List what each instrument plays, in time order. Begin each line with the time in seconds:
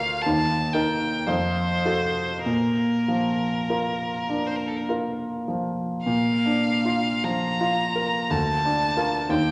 Already playing: grand piano D2 F4 A#4, violin F5
0.22 grand piano D#2, violin A5
0.73 grand piano D#4 A#4, violin G5
1.26 grand piano F2, violin C5
1.85 grand piano F#4 A4
2.44 grand piano A#2, violin A#4
3.08 grand piano F3
3.70 grand piano F4 A#4
4.29 grand piano D4
4.47 violin C5
4.56 violin A#4
4.68 violin A4
4.77 violin A#4
4.89 grand piano F4 A#4
5.48 grand piano F3
6.05 grand piano A#2, violin F5
6.46 grand piano D4
6.85 grand piano F4
7.24 grand piano F3, violin A#5
7.61 grand piano F4
7.96 grand piano A#4
8.30 grand piano D2, violin A5
8.65 grand piano D4
8.97 grand piano F4 A#4
9.29 grand piano D#2, violin G5